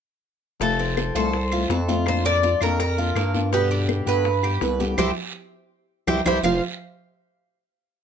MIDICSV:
0, 0, Header, 1, 7, 480
1, 0, Start_track
1, 0, Key_signature, -1, "major"
1, 0, Tempo, 364078
1, 806, Time_signature, 4, 2, 24, 8
1, 10588, End_track
2, 0, Start_track
2, 0, Title_t, "Cuban tres"
2, 0, Program_c, 0, 25
2, 812, Note_on_c, 0, 69, 76
2, 1524, Note_on_c, 0, 72, 74
2, 1549, Note_off_c, 0, 69, 0
2, 2730, Note_off_c, 0, 72, 0
2, 2745, Note_on_c, 0, 72, 79
2, 2971, Note_off_c, 0, 72, 0
2, 2976, Note_on_c, 0, 74, 91
2, 3459, Note_off_c, 0, 74, 0
2, 3464, Note_on_c, 0, 70, 73
2, 3675, Note_off_c, 0, 70, 0
2, 3691, Note_on_c, 0, 70, 75
2, 4359, Note_off_c, 0, 70, 0
2, 4664, Note_on_c, 0, 67, 80
2, 5386, Note_on_c, 0, 71, 88
2, 5399, Note_off_c, 0, 67, 0
2, 6573, Note_on_c, 0, 67, 95
2, 6582, Note_off_c, 0, 71, 0
2, 6583, Note_on_c, 0, 72, 80
2, 6587, Note_on_c, 0, 76, 76
2, 6729, Note_off_c, 0, 67, 0
2, 6730, Note_off_c, 0, 76, 0
2, 6731, Note_off_c, 0, 72, 0
2, 8016, Note_on_c, 0, 67, 79
2, 8022, Note_on_c, 0, 72, 71
2, 8025, Note_on_c, 0, 76, 70
2, 8169, Note_off_c, 0, 76, 0
2, 8170, Note_off_c, 0, 67, 0
2, 8171, Note_off_c, 0, 72, 0
2, 8268, Note_on_c, 0, 76, 94
2, 8273, Note_on_c, 0, 72, 80
2, 8275, Note_on_c, 0, 67, 85
2, 8415, Note_off_c, 0, 67, 0
2, 8417, Note_off_c, 0, 72, 0
2, 8418, Note_off_c, 0, 76, 0
2, 8501, Note_on_c, 0, 77, 81
2, 8720, Note_off_c, 0, 77, 0
2, 10588, End_track
3, 0, Start_track
3, 0, Title_t, "Cuban tres"
3, 0, Program_c, 1, 25
3, 806, Note_on_c, 1, 57, 69
3, 1038, Note_off_c, 1, 57, 0
3, 1045, Note_on_c, 1, 60, 62
3, 1510, Note_off_c, 1, 60, 0
3, 1526, Note_on_c, 1, 69, 70
3, 1991, Note_off_c, 1, 69, 0
3, 2006, Note_on_c, 1, 65, 67
3, 2238, Note_off_c, 1, 65, 0
3, 2248, Note_on_c, 1, 69, 63
3, 2479, Note_off_c, 1, 69, 0
3, 2491, Note_on_c, 1, 65, 71
3, 2953, Note_off_c, 1, 65, 0
3, 2969, Note_on_c, 1, 58, 72
3, 3200, Note_off_c, 1, 58, 0
3, 3207, Note_on_c, 1, 65, 63
3, 3439, Note_off_c, 1, 65, 0
3, 3450, Note_on_c, 1, 70, 68
3, 3914, Note_off_c, 1, 70, 0
3, 3932, Note_on_c, 1, 65, 62
3, 4162, Note_off_c, 1, 65, 0
3, 4171, Note_on_c, 1, 58, 64
3, 4635, Note_off_c, 1, 58, 0
3, 4648, Note_on_c, 1, 59, 74
3, 4881, Note_off_c, 1, 59, 0
3, 4892, Note_on_c, 1, 62, 63
3, 5356, Note_off_c, 1, 62, 0
3, 5368, Note_on_c, 1, 71, 70
3, 5835, Note_off_c, 1, 71, 0
3, 5853, Note_on_c, 1, 67, 70
3, 6085, Note_off_c, 1, 67, 0
3, 6090, Note_on_c, 1, 71, 59
3, 6323, Note_off_c, 1, 71, 0
3, 6331, Note_on_c, 1, 67, 67
3, 6554, Note_off_c, 1, 67, 0
3, 6566, Note_on_c, 1, 60, 94
3, 6571, Note_on_c, 1, 67, 77
3, 6578, Note_on_c, 1, 64, 75
3, 6723, Note_off_c, 1, 60, 0
3, 6724, Note_off_c, 1, 67, 0
3, 6725, Note_off_c, 1, 64, 0
3, 8008, Note_on_c, 1, 67, 83
3, 8015, Note_on_c, 1, 60, 77
3, 8023, Note_on_c, 1, 64, 82
3, 8166, Note_off_c, 1, 60, 0
3, 8166, Note_off_c, 1, 67, 0
3, 8167, Note_off_c, 1, 64, 0
3, 8247, Note_on_c, 1, 64, 93
3, 8252, Note_on_c, 1, 60, 97
3, 8258, Note_on_c, 1, 67, 75
3, 8405, Note_off_c, 1, 60, 0
3, 8405, Note_off_c, 1, 64, 0
3, 8405, Note_off_c, 1, 67, 0
3, 8482, Note_on_c, 1, 65, 87
3, 8491, Note_on_c, 1, 72, 79
3, 8498, Note_on_c, 1, 77, 96
3, 8710, Note_off_c, 1, 65, 0
3, 8715, Note_off_c, 1, 72, 0
3, 8719, Note_off_c, 1, 77, 0
3, 10588, End_track
4, 0, Start_track
4, 0, Title_t, "Nylon-string guitar"
4, 0, Program_c, 2, 24
4, 786, Note_on_c, 2, 48, 58
4, 795, Note_on_c, 2, 53, 66
4, 799, Note_on_c, 2, 57, 66
4, 809, Note_on_c, 2, 60, 58
4, 814, Note_on_c, 2, 65, 69
4, 1504, Note_off_c, 2, 60, 0
4, 1505, Note_off_c, 2, 48, 0
4, 1506, Note_off_c, 2, 65, 0
4, 1512, Note_off_c, 2, 57, 0
4, 1512, Note_on_c, 2, 65, 63
4, 1520, Note_on_c, 2, 60, 52
4, 1530, Note_on_c, 2, 57, 56
4, 1534, Note_off_c, 2, 53, 0
4, 1539, Note_on_c, 2, 53, 51
4, 1748, Note_off_c, 2, 65, 0
4, 1750, Note_off_c, 2, 53, 0
4, 1752, Note_off_c, 2, 60, 0
4, 1755, Note_off_c, 2, 57, 0
4, 2010, Note_on_c, 2, 65, 49
4, 2022, Note_on_c, 2, 60, 40
4, 2041, Note_on_c, 2, 57, 34
4, 2464, Note_off_c, 2, 65, 0
4, 2478, Note_off_c, 2, 60, 0
4, 2480, Note_on_c, 2, 65, 59
4, 2488, Note_off_c, 2, 57, 0
4, 2494, Note_on_c, 2, 60, 59
4, 2504, Note_on_c, 2, 57, 53
4, 2512, Note_on_c, 2, 53, 46
4, 2702, Note_off_c, 2, 53, 0
4, 2713, Note_off_c, 2, 65, 0
4, 2717, Note_on_c, 2, 53, 64
4, 2720, Note_off_c, 2, 60, 0
4, 2725, Note_off_c, 2, 57, 0
4, 2731, Note_on_c, 2, 58, 66
4, 2740, Note_on_c, 2, 62, 64
4, 2751, Note_on_c, 2, 65, 65
4, 3427, Note_off_c, 2, 65, 0
4, 3432, Note_off_c, 2, 53, 0
4, 3439, Note_off_c, 2, 58, 0
4, 3443, Note_on_c, 2, 65, 59
4, 3453, Note_off_c, 2, 62, 0
4, 3458, Note_on_c, 2, 62, 57
4, 3472, Note_on_c, 2, 58, 49
4, 3675, Note_off_c, 2, 65, 0
4, 3682, Note_off_c, 2, 62, 0
4, 3685, Note_off_c, 2, 58, 0
4, 3920, Note_on_c, 2, 65, 44
4, 3938, Note_on_c, 2, 62, 43
4, 3952, Note_on_c, 2, 58, 37
4, 4384, Note_off_c, 2, 65, 0
4, 4399, Note_off_c, 2, 62, 0
4, 4400, Note_on_c, 2, 65, 65
4, 4410, Note_off_c, 2, 58, 0
4, 4415, Note_on_c, 2, 62, 64
4, 4432, Note_on_c, 2, 58, 56
4, 4634, Note_off_c, 2, 65, 0
4, 4641, Note_on_c, 2, 47, 66
4, 4642, Note_off_c, 2, 62, 0
4, 4650, Note_off_c, 2, 58, 0
4, 4653, Note_on_c, 2, 50, 70
4, 4660, Note_on_c, 2, 55, 65
4, 4667, Note_on_c, 2, 59, 76
4, 4675, Note_on_c, 2, 67, 69
4, 5348, Note_off_c, 2, 67, 0
4, 5353, Note_off_c, 2, 59, 0
4, 5354, Note_on_c, 2, 67, 66
4, 5356, Note_off_c, 2, 47, 0
4, 5362, Note_off_c, 2, 50, 0
4, 5369, Note_on_c, 2, 59, 59
4, 5370, Note_off_c, 2, 55, 0
4, 5376, Note_on_c, 2, 55, 56
4, 5385, Note_on_c, 2, 50, 52
4, 5592, Note_off_c, 2, 67, 0
4, 5593, Note_off_c, 2, 50, 0
4, 5594, Note_off_c, 2, 55, 0
4, 5600, Note_off_c, 2, 59, 0
4, 5837, Note_on_c, 2, 67, 50
4, 5857, Note_on_c, 2, 59, 43
4, 5871, Note_on_c, 2, 55, 38
4, 6301, Note_off_c, 2, 67, 0
4, 6314, Note_off_c, 2, 59, 0
4, 6317, Note_on_c, 2, 67, 62
4, 6325, Note_off_c, 2, 55, 0
4, 6330, Note_on_c, 2, 59, 61
4, 6341, Note_on_c, 2, 55, 53
4, 6351, Note_on_c, 2, 50, 51
4, 6550, Note_off_c, 2, 55, 0
4, 6555, Note_off_c, 2, 67, 0
4, 6559, Note_off_c, 2, 50, 0
4, 6561, Note_off_c, 2, 59, 0
4, 6565, Note_on_c, 2, 52, 85
4, 6567, Note_on_c, 2, 55, 82
4, 6570, Note_on_c, 2, 60, 90
4, 6721, Note_off_c, 2, 60, 0
4, 6722, Note_off_c, 2, 55, 0
4, 6723, Note_off_c, 2, 52, 0
4, 8006, Note_on_c, 2, 52, 81
4, 8014, Note_on_c, 2, 55, 84
4, 8018, Note_on_c, 2, 60, 80
4, 8164, Note_off_c, 2, 60, 0
4, 8165, Note_off_c, 2, 52, 0
4, 8166, Note_off_c, 2, 55, 0
4, 8243, Note_on_c, 2, 52, 86
4, 8246, Note_on_c, 2, 55, 82
4, 8253, Note_on_c, 2, 60, 82
4, 8401, Note_off_c, 2, 55, 0
4, 8402, Note_off_c, 2, 52, 0
4, 8403, Note_off_c, 2, 60, 0
4, 8480, Note_on_c, 2, 41, 60
4, 8488, Note_on_c, 2, 48, 64
4, 8494, Note_on_c, 2, 53, 63
4, 8501, Note_on_c, 2, 57, 69
4, 8504, Note_on_c, 2, 60, 73
4, 8509, Note_on_c, 2, 65, 72
4, 8678, Note_off_c, 2, 41, 0
4, 8682, Note_off_c, 2, 48, 0
4, 8685, Note_off_c, 2, 53, 0
4, 8689, Note_off_c, 2, 57, 0
4, 8690, Note_off_c, 2, 60, 0
4, 8693, Note_off_c, 2, 65, 0
4, 10588, End_track
5, 0, Start_track
5, 0, Title_t, "FM bass"
5, 0, Program_c, 3, 39
5, 794, Note_on_c, 3, 29, 93
5, 1468, Note_off_c, 3, 29, 0
5, 1515, Note_on_c, 3, 36, 89
5, 2189, Note_off_c, 3, 36, 0
5, 2231, Note_on_c, 3, 41, 91
5, 3362, Note_off_c, 3, 41, 0
5, 3441, Note_on_c, 3, 41, 90
5, 4114, Note_off_c, 3, 41, 0
5, 4155, Note_on_c, 3, 43, 86
5, 5287, Note_off_c, 3, 43, 0
5, 5359, Note_on_c, 3, 43, 97
5, 6035, Note_off_c, 3, 43, 0
5, 6081, Note_on_c, 3, 36, 88
5, 6533, Note_off_c, 3, 36, 0
5, 6562, Note_on_c, 3, 36, 99
5, 6745, Note_off_c, 3, 36, 0
5, 8006, Note_on_c, 3, 36, 95
5, 8188, Note_off_c, 3, 36, 0
5, 8244, Note_on_c, 3, 36, 85
5, 8427, Note_off_c, 3, 36, 0
5, 8474, Note_on_c, 3, 29, 95
5, 8706, Note_off_c, 3, 29, 0
5, 10588, End_track
6, 0, Start_track
6, 0, Title_t, "Muted nylon-string guitar strokes"
6, 1762, Note_on_c, 9, 29, 59
6, 1894, Note_off_c, 9, 29, 0
6, 3693, Note_on_c, 9, 29, 54
6, 3825, Note_off_c, 9, 29, 0
6, 5607, Note_on_c, 9, 29, 59
6, 5739, Note_off_c, 9, 29, 0
6, 10588, End_track
7, 0, Start_track
7, 0, Title_t, "Drums"
7, 802, Note_on_c, 9, 60, 65
7, 806, Note_on_c, 9, 63, 34
7, 806, Note_on_c, 9, 74, 60
7, 933, Note_off_c, 9, 60, 0
7, 938, Note_off_c, 9, 63, 0
7, 938, Note_off_c, 9, 74, 0
7, 1044, Note_on_c, 9, 60, 32
7, 1051, Note_on_c, 9, 63, 32
7, 1176, Note_off_c, 9, 60, 0
7, 1183, Note_off_c, 9, 63, 0
7, 1280, Note_on_c, 9, 75, 62
7, 1284, Note_on_c, 9, 60, 58
7, 1284, Note_on_c, 9, 63, 86
7, 1284, Note_on_c, 9, 73, 67
7, 1412, Note_off_c, 9, 75, 0
7, 1415, Note_off_c, 9, 63, 0
7, 1416, Note_off_c, 9, 60, 0
7, 1416, Note_off_c, 9, 73, 0
7, 1521, Note_on_c, 9, 73, 63
7, 1522, Note_on_c, 9, 60, 37
7, 1526, Note_on_c, 9, 63, 28
7, 1653, Note_off_c, 9, 73, 0
7, 1654, Note_off_c, 9, 60, 0
7, 1658, Note_off_c, 9, 63, 0
7, 1760, Note_on_c, 9, 60, 66
7, 1763, Note_on_c, 9, 74, 63
7, 1769, Note_on_c, 9, 63, 28
7, 1891, Note_off_c, 9, 60, 0
7, 1895, Note_off_c, 9, 74, 0
7, 1901, Note_off_c, 9, 63, 0
7, 1998, Note_on_c, 9, 60, 31
7, 2001, Note_on_c, 9, 75, 63
7, 2005, Note_on_c, 9, 63, 33
7, 2130, Note_off_c, 9, 60, 0
7, 2133, Note_off_c, 9, 75, 0
7, 2137, Note_off_c, 9, 63, 0
7, 2240, Note_on_c, 9, 60, 68
7, 2240, Note_on_c, 9, 61, 84
7, 2241, Note_on_c, 9, 73, 58
7, 2252, Note_on_c, 9, 63, 83
7, 2372, Note_off_c, 9, 60, 0
7, 2372, Note_off_c, 9, 61, 0
7, 2373, Note_off_c, 9, 73, 0
7, 2384, Note_off_c, 9, 63, 0
7, 2485, Note_on_c, 9, 73, 63
7, 2497, Note_on_c, 9, 63, 76
7, 2617, Note_off_c, 9, 73, 0
7, 2629, Note_off_c, 9, 63, 0
7, 2716, Note_on_c, 9, 75, 60
7, 2722, Note_on_c, 9, 60, 66
7, 2728, Note_on_c, 9, 74, 68
7, 2736, Note_on_c, 9, 63, 35
7, 2847, Note_off_c, 9, 75, 0
7, 2854, Note_off_c, 9, 60, 0
7, 2860, Note_off_c, 9, 74, 0
7, 2868, Note_off_c, 9, 63, 0
7, 2968, Note_on_c, 9, 60, 32
7, 2975, Note_on_c, 9, 63, 35
7, 3100, Note_off_c, 9, 60, 0
7, 3107, Note_off_c, 9, 63, 0
7, 3202, Note_on_c, 9, 60, 54
7, 3209, Note_on_c, 9, 73, 62
7, 3216, Note_on_c, 9, 63, 85
7, 3334, Note_off_c, 9, 60, 0
7, 3341, Note_off_c, 9, 73, 0
7, 3348, Note_off_c, 9, 63, 0
7, 3437, Note_on_c, 9, 75, 66
7, 3447, Note_on_c, 9, 60, 35
7, 3448, Note_on_c, 9, 73, 68
7, 3457, Note_on_c, 9, 63, 30
7, 3569, Note_off_c, 9, 75, 0
7, 3579, Note_off_c, 9, 60, 0
7, 3580, Note_off_c, 9, 73, 0
7, 3589, Note_off_c, 9, 63, 0
7, 3687, Note_on_c, 9, 60, 60
7, 3688, Note_on_c, 9, 74, 69
7, 3693, Note_on_c, 9, 63, 31
7, 3819, Note_off_c, 9, 60, 0
7, 3820, Note_off_c, 9, 74, 0
7, 3825, Note_off_c, 9, 63, 0
7, 3934, Note_on_c, 9, 63, 33
7, 4066, Note_off_c, 9, 63, 0
7, 4160, Note_on_c, 9, 75, 63
7, 4171, Note_on_c, 9, 60, 65
7, 4171, Note_on_c, 9, 61, 80
7, 4171, Note_on_c, 9, 73, 64
7, 4175, Note_on_c, 9, 63, 32
7, 4292, Note_off_c, 9, 75, 0
7, 4303, Note_off_c, 9, 60, 0
7, 4303, Note_off_c, 9, 61, 0
7, 4303, Note_off_c, 9, 73, 0
7, 4306, Note_off_c, 9, 63, 0
7, 4407, Note_on_c, 9, 60, 32
7, 4410, Note_on_c, 9, 73, 69
7, 4414, Note_on_c, 9, 63, 68
7, 4539, Note_off_c, 9, 60, 0
7, 4542, Note_off_c, 9, 73, 0
7, 4545, Note_off_c, 9, 63, 0
7, 4650, Note_on_c, 9, 60, 67
7, 4651, Note_on_c, 9, 74, 68
7, 4653, Note_on_c, 9, 63, 29
7, 4782, Note_off_c, 9, 60, 0
7, 4783, Note_off_c, 9, 74, 0
7, 4784, Note_off_c, 9, 63, 0
7, 4887, Note_on_c, 9, 60, 33
7, 4892, Note_on_c, 9, 63, 33
7, 5019, Note_off_c, 9, 60, 0
7, 5024, Note_off_c, 9, 63, 0
7, 5124, Note_on_c, 9, 75, 60
7, 5126, Note_on_c, 9, 73, 62
7, 5127, Note_on_c, 9, 63, 93
7, 5130, Note_on_c, 9, 60, 59
7, 5256, Note_off_c, 9, 75, 0
7, 5258, Note_off_c, 9, 73, 0
7, 5259, Note_off_c, 9, 63, 0
7, 5262, Note_off_c, 9, 60, 0
7, 5363, Note_on_c, 9, 60, 32
7, 5364, Note_on_c, 9, 73, 66
7, 5374, Note_on_c, 9, 63, 33
7, 5495, Note_off_c, 9, 60, 0
7, 5496, Note_off_c, 9, 73, 0
7, 5505, Note_off_c, 9, 63, 0
7, 5605, Note_on_c, 9, 60, 73
7, 5608, Note_on_c, 9, 74, 59
7, 5615, Note_on_c, 9, 63, 30
7, 5737, Note_off_c, 9, 60, 0
7, 5739, Note_off_c, 9, 74, 0
7, 5746, Note_off_c, 9, 63, 0
7, 5841, Note_on_c, 9, 60, 35
7, 5846, Note_on_c, 9, 75, 67
7, 5853, Note_on_c, 9, 63, 31
7, 5973, Note_off_c, 9, 60, 0
7, 5978, Note_off_c, 9, 75, 0
7, 5985, Note_off_c, 9, 63, 0
7, 6080, Note_on_c, 9, 60, 71
7, 6080, Note_on_c, 9, 61, 79
7, 6087, Note_on_c, 9, 73, 68
7, 6094, Note_on_c, 9, 63, 85
7, 6212, Note_off_c, 9, 60, 0
7, 6212, Note_off_c, 9, 61, 0
7, 6219, Note_off_c, 9, 73, 0
7, 6226, Note_off_c, 9, 63, 0
7, 6328, Note_on_c, 9, 73, 65
7, 6333, Note_on_c, 9, 63, 76
7, 6460, Note_off_c, 9, 73, 0
7, 6465, Note_off_c, 9, 63, 0
7, 6558, Note_on_c, 9, 61, 95
7, 6564, Note_on_c, 9, 75, 93
7, 6571, Note_on_c, 9, 64, 89
7, 6571, Note_on_c, 9, 74, 92
7, 6690, Note_off_c, 9, 61, 0
7, 6695, Note_off_c, 9, 75, 0
7, 6703, Note_off_c, 9, 64, 0
7, 6703, Note_off_c, 9, 74, 0
7, 8006, Note_on_c, 9, 61, 86
7, 8010, Note_on_c, 9, 74, 85
7, 8010, Note_on_c, 9, 75, 87
7, 8015, Note_on_c, 9, 64, 91
7, 8138, Note_off_c, 9, 61, 0
7, 8142, Note_off_c, 9, 74, 0
7, 8142, Note_off_c, 9, 75, 0
7, 8147, Note_off_c, 9, 64, 0
7, 8249, Note_on_c, 9, 74, 86
7, 8250, Note_on_c, 9, 61, 87
7, 8253, Note_on_c, 9, 64, 91
7, 8253, Note_on_c, 9, 75, 101
7, 8381, Note_off_c, 9, 74, 0
7, 8382, Note_off_c, 9, 61, 0
7, 8384, Note_off_c, 9, 75, 0
7, 8385, Note_off_c, 9, 64, 0
7, 8488, Note_on_c, 9, 61, 91
7, 8490, Note_on_c, 9, 74, 90
7, 8495, Note_on_c, 9, 75, 93
7, 8497, Note_on_c, 9, 64, 88
7, 8620, Note_off_c, 9, 61, 0
7, 8622, Note_off_c, 9, 74, 0
7, 8627, Note_off_c, 9, 75, 0
7, 8629, Note_off_c, 9, 64, 0
7, 10588, End_track
0, 0, End_of_file